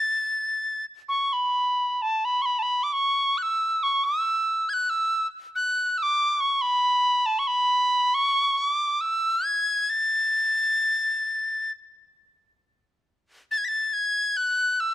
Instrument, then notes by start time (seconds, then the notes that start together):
tin whistle
Already playing: A6
1.09 C#6
1.33 B5
2.02 A5
2.25 B5
2.42 B5 C#6
2.59 A5 B5
2.83 D6
2.93 C#6
3.38 F#6
3.43 E6
3.83 C#6
4.04 E6
4.69 G#6
4.73 F#6
4.90 E6
5.55 F#6
5.98 E6
6.03 D6
6.40 C#6
6.62 B5
7.26 A5
7.39 C#6
7.47 B5
8.14 C#6
8.57 D6
9.01 E6
9.45 G#6
9.90 A6
13.51 A6
13.58 G#6
13.65 A6 B6
13.93 G#6
14.37 F#6
14.80 E6